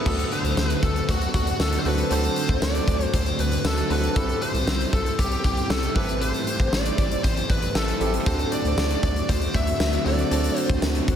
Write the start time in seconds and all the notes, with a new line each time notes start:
0.05 D2 D3 A3 C4 D4 F#4 A4, kick, crash
0.19 closed hi-hat
0.32 C5, closed hi-hat
0.44 D2, closed hi-hat
0.57 D2, snare, tambourine
0.68 B4, closed hi-hat
0.83 D2 A4, kick, closed hi-hat
0.96 closed hi-hat
1.08 D2 D3 A3 D4 F#4, kick, closed hi-hat
1.22 closed hi-hat
1.34 D2 F#4, kick, closed hi-hat
1.47 closed hi-hat
1.59 D2 D3 A3 D4 A4, snare, tambourine
1.73 closed hi-hat
1.79 C5
1.85 D2 C4 D4 F#4 A4 B4, open hi-hat
1.98 closed hi-hat
2.10 D2 D3 A3 C4 D4 F#4 A4 C5, closed hi-hat
2.24 closed hi-hat
2.36 closed hi-hat
2.49 D2, kick, closed hi-hat
2.62 D2 D5, snare, tambourine
2.75 closed hi-hat
2.87 D2 A3 D4, kick, closed hi-hat
3.01 closed hi-hat
3.05 C5
3.13 D2 D3 A3 D4 C5, kick, closed hi-hat
3.26 closed hi-hat
3.39 D2 B4, closed hi-hat
3.52 closed hi-hat
3.64 D2 D3 A3 D4 A4, snare, tambourine
3.78 closed hi-hat
3.90 D2 C4 D4 F#4 A4 B4, open hi-hat
4.04 closed hi-hat
4.16 C2 C3 G3 C4 E4 G4 A4 B5, kick, closed hi-hat
4.29 closed hi-hat
4.42 C5, closed hi-hat
4.54 C2, closed hi-hat
4.67 C2, snare, tambourine
4.80 closed hi-hat
4.93 C2 G3 C4 A4, kick, closed hi-hat
5.06 closed hi-hat
5.18 C2 C3 G3 C4 G4, kick, closed hi-hat
5.32 closed hi-hat
5.44 C2 G4, kick, closed hi-hat
5.57 closed hi-hat
5.69 C2 C3 G3 C4 A4, snare, tambourine
5.83 closed hi-hat
5.95 A1 A2 E3 A3 C4 E4 G4 A4 B4 C5, kick, open hi-hat
6.09 closed hi-hat
6.21 C5, closed hi-hat
6.35 closed hi-hat
6.47 closed hi-hat
6.59 A1, kick, closed hi-hat
6.72 A1 D5, snare, tambourine
6.86 closed hi-hat
6.98 A1 E3 A3, kick, closed hi-hat
7.12 closed hi-hat
7.24 A1 A2 E3 A3 C5, kick, closed hi-hat
7.37 closed hi-hat
7.50 A1 B4, kick, closed hi-hat
7.62 closed hi-hat
7.75 A1 A2 E3 A3 A4, snare, tambourine
7.88 closed hi-hat
8.00 A1 C4 E4 G4 A4, closed hi-hat
8.14 closed hi-hat
8.26 D2 D3 A3 C4 D4 F#4 A4 C5, kick, closed hi-hat
8.39 closed hi-hat
8.52 D5, closed hi-hat
8.65 D2, closed hi-hat
8.77 D2, snare, tambourine
8.90 closed hi-hat
9.03 D2 A3 D4 D5, kick, closed hi-hat
9.16 closed hi-hat
9.29 D2 D3 A3 D4 C5, kick, closed hi-hat
9.42 closed hi-hat
9.54 D2 E5, kick, closed hi-hat
9.67 closed hi-hat
9.80 D2 D3 A3 D4, snare, tambourine
9.93 closed hi-hat
10.05 D2 C4 D4 F#4 A4 D5, open hi-hat
10.19 closed hi-hat
10.31 D2 D3 A3 C4 D4 F#4 A4, closed hi-hat
10.44 closed hi-hat
10.57 C5, closed hi-hat
10.69 D2, kick, closed hi-hat
10.82 D2, snare, tambourine
10.95 closed hi-hat
11.08 D2 A3 D4, kick, closed hi-hat